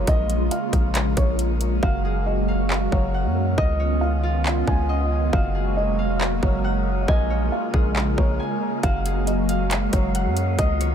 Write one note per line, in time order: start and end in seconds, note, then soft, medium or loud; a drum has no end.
0.00 3.54 G#3 medium
0.00 1.79 A#3 medium
0.07 0.50 A#1 loud
0.07 1.81 C#3 medium
0.07 1.81 C#4 medium
0.07 1.81 F4 medium
0.07 3.54 A#4 medium
0.07 0.49 D#5 loud
0.07 kick loud
0.07 closed hi-hat medium
0.30 closed hi-hat medium
0.51 1.13 F5 medium
0.51 closed hi-hat medium
0.73 1.15 A#1 loud
0.73 kick medium
0.73 closed hi-hat medium
0.95 clap loud
0.95 closed hi-hat medium
1.17 1.80 A#1 loud
1.17 1.38 C#5 medium
1.17 kick loud
1.17 closed hi-hat medium
1.39 closed hi-hat medium
1.61 closed hi-hat medium
1.83 2.88 F#1 loud
1.83 3.56 F#3 medium
1.83 3.56 A#3 medium
1.83 3.56 F#4 medium
1.83 4.29 F#4 loud
1.83 7.04 F5 medium
1.83 2.24 F5 loud
1.83 kick loud
2.05 4.32 G#4 medium
2.26 2.88 D#5 medium
2.48 4.15 F5 medium
2.70 clap loud
2.92 3.26 F#1 loud
2.92 3.63 F#3 medium
2.92 3.54 C#5 medium
2.92 kick medium
3.14 4.29 F#5 loud
3.25 3.56 F#2 medium
3.57 4.63 C#2 loud
3.57 5.31 D#3 medium
3.57 5.31 B3 medium
3.57 5.31 C#4 medium
3.57 5.31 F4 medium
3.57 3.99 D#5 loud
3.57 4.89 D#5 loud
3.57 5.31 D#5 medium
3.57 kick loud
3.80 5.71 C#5 medium
4.01 4.63 F5 medium
4.23 5.39 F4 loud
4.46 clap loud
4.67 5.31 C#2 loud
4.67 7.57 C#4 medium
4.67 5.29 G#5 medium
4.67 kick medium
4.89 6.67 D#5 medium
5.33 5.89 F#1 loud
5.33 7.07 F#3 medium
5.33 10.55 G#3 medium
5.33 7.07 G#3 medium
5.33 8.80 A#3 medium
5.33 7.07 F#4 medium
5.33 7.77 F#4 medium
5.33 10.55 A#4 medium
5.33 5.74 F5 loud
5.33 kick loud
5.55 7.73 G#4 medium
5.77 6.38 D#5 medium
5.88 6.40 F1 loud
5.99 7.65 F5 medium
6.21 clap loud
6.43 7.06 F#1 loud
6.43 7.13 F#3 medium
6.43 7.05 C#5 medium
6.43 kick medium
6.64 8.25 F#5 loud
7.08 7.50 A#1 loud
7.08 8.82 C#3 medium
7.08 8.82 G#3 medium
7.08 8.82 C#4 medium
7.08 8.82 F4 medium
7.08 7.50 D#5 loud
7.08 8.39 G#5 loud
7.08 kick loud
7.30 9.21 C#5 medium
7.52 8.14 F5 medium
7.74 8.16 A#1 loud
7.74 9.05 G#4 medium
7.74 kick medium
7.96 clap loud
8.17 8.39 A#1 loud
8.17 10.95 A#3 medium
8.17 8.38 C#5 medium
8.17 kick medium
8.40 9.90 G#5 loud
8.83 9.89 F#1 loud
8.83 10.57 F#3 medium
8.83 10.57 G#3 medium
8.83 10.57 A#3 medium
8.83 10.95 F#4 loud
8.83 10.57 F#4 medium
8.83 9.25 F5 loud
8.83 10.95 F5 medium
8.83 kick loud
8.83 closed hi-hat medium
9.05 10.95 G#4 medium
9.05 closed hi-hat medium
9.27 9.89 D#5 medium
9.27 closed hi-hat medium
9.49 10.95 F5 medium
9.49 closed hi-hat medium
9.71 clap loud
9.71 closed hi-hat medium
9.92 10.27 F#1 loud
9.92 10.64 F#3 medium
9.92 10.54 C#5 medium
9.92 kick medium
9.92 closed hi-hat medium
10.15 10.95 F#5 loud
10.15 closed hi-hat medium
10.26 10.57 F#2 loud
10.37 closed hi-hat medium
10.58 10.95 C#2 loud
10.58 10.95 D#3 medium
10.58 10.95 B3 medium
10.58 10.95 C#4 medium
10.58 10.95 F4 medium
10.58 10.95 D#5 loud
10.58 10.95 D#5 medium
10.58 kick loud
10.58 closed hi-hat medium
10.80 10.95 C#5 medium
10.80 closed hi-hat medium